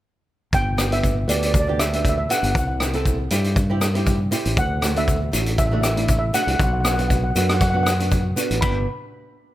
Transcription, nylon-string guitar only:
0.77 0.86 B3 medium
0.77 0.87 D4 medium
0.77 0.87 G4 medium
0.90 1.14 B3 medium
0.90 1.14 D4 medium
0.90 1.15 G4 medium
1.28 1.51 B3 medium
1.28 1.52 D4 soft
1.28 1.52 G4 medium
1.67 1.82 B3 medium
1.67 1.83 D4 medium
1.67 1.83 G4 medium
1.92 2.15 B3 medium
1.92 2.16 D4 medium
1.92 2.16 G4 medium
2.29 2.55 B3 medium
2.29 2.56 D4 medium
2.29 2.56 G4 medium
2.80 2.89 C4 medium
2.80 2.89 E4 medium
2.80 2.89 G4 medium
2.94 3.17 C4 medium
2.94 3.17 E4 medium
2.94 3.17 A4 medium
3.30 3.54 C4 medium
3.30 3.54 E4 medium
3.30 3.55 G4 medium
3.70 3.84 C4 medium
3.70 3.84 E4 medium
3.70 3.85 G4 medium
3.94 4.17 C4 medium
3.94 4.18 E4 medium
3.94 4.18 G4 medium
4.31 4.57 C4 medium
4.31 4.57 E4 medium
4.31 4.58 G4 medium
4.81 4.90 A3 medium
4.81 4.91 D4 medium
4.81 4.91 F#4 medium
4.95 5.18 A3 medium
4.95 5.19 D4 medium
4.95 5.19 F#4 medium
5.32 5.55 A3 medium
5.32 5.56 D4 medium
5.32 5.56 F#4 medium
5.71 5.86 A3 medium
5.71 5.86 D4 medium
5.71 5.87 F#4 medium
5.96 6.19 A3 medium
5.96 6.20 D4 medium
5.96 6.20 E4 medium
6.33 6.59 A3 medium
6.33 6.60 D4 medium
6.33 6.60 F#4 medium
6.84 6.93 B3 medium
6.84 6.93 D4 medium
6.84 6.94 F#4 medium
6.98 7.21 B3 medium
6.98 7.21 D4 medium
6.98 7.22 F#4 medium
7.35 7.58 B3 medium
7.35 7.59 D4 medium
7.35 7.59 F#4 medium
7.73 7.88 B3 medium
7.73 7.89 D4 medium
7.73 7.89 F#4 medium
7.99 8.22 B3 medium
7.99 8.23 D4 medium
7.99 8.23 F#4 medium
8.36 8.61 B3 medium
8.36 8.61 D4 medium
8.36 8.62 F#4 medium
8.62 8.85 B3 medium
8.62 8.85 D4 medium
8.62 8.85 G4 medium

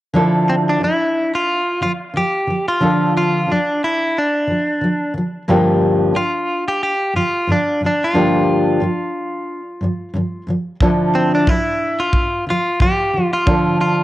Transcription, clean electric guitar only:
0.49 0.54 C4 medium
0.69 0.84 D4 medium
0.84 1.31 E4 medium
1.35 1.81 F4 medium
1.83 1.92 F4 medium
2.17 2.68 G4 medium
2.68 3.13 F4 medium
3.17 3.51 F4 medium
3.51 3.81 D4 medium
3.84 4.17 E4 medium
4.18 5.13 D4 medium
6.16 6.64 F4 medium
6.68 6.82 G4 medium
6.83 7.16 G4 medium
7.17 7.50 F4 medium
7.52 7.81 D4 medium
7.86 8.03 D4 medium
8.04 10.46 F4 medium
11.15 11.33 C4 medium
11.35 11.49 D4 medium
11.49 12.01 E4 medium
12.00 12.44 F4 medium
12.50 12.81 F4 medium
12.82 13.33 G4 medium
13.33 13.77 F4 medium
13.81 14.03 F4 medium

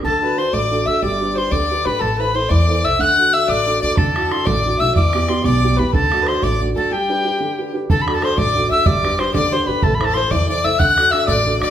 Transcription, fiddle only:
0.05 0.22 A4 medium
0.23 0.39 B4 medium
0.38 0.55 C5 medium
0.54 0.87 D5 medium
0.86 1.03 E5 medium
1.02 1.37 D5 medium
1.35 1.53 C5 medium
1.51 1.86 D5 medium
1.85 2.01 B4 medium
1.99 2.18 A4 medium
2.18 2.36 B4 medium
2.34 2.50 C5 medium
2.49 2.86 D5 medium
2.85 3.02 E5 medium
3.00 3.35 F#5 medium
3.33 3.50 E5 medium
3.48 3.81 D5 loud
3.81 3.96 D5 medium
3.97 4.46 A4 medium
4.45 4.78 D5 medium
4.79 4.94 E5 medium
4.94 5.40 D5 medium
5.44 5.78 D5 medium
5.76 5.94 B4 medium
5.93 6.24 A4 medium
6.22 6.28 B4 medium
6.26 6.44 C5 medium
6.43 6.61 D5 medium
6.76 6.93 A4 medium
6.91 7.73 G4 medium
7.90 8.01 A4 medium
8.13 8.22 A4 medium
8.23 8.37 C5 medium
8.38 8.69 D5 medium
8.70 8.88 E5 medium
8.86 9.20 D5 medium
9.19 9.34 C5 medium
9.35 9.54 D5 medium
9.53 9.69 C5 medium
9.67 9.84 B4 medium
9.83 9.95 A4 medium
10.06 10.19 A4 medium
10.17 10.33 C5 medium
10.31 10.48 D5 medium
10.49 10.66 D5 medium
10.64 10.81 E5 medium
10.80 11.12 F#5 medium
11.11 11.26 E5 loud
11.27 11.58 D5 medium
11.61 11.70 D5 medium

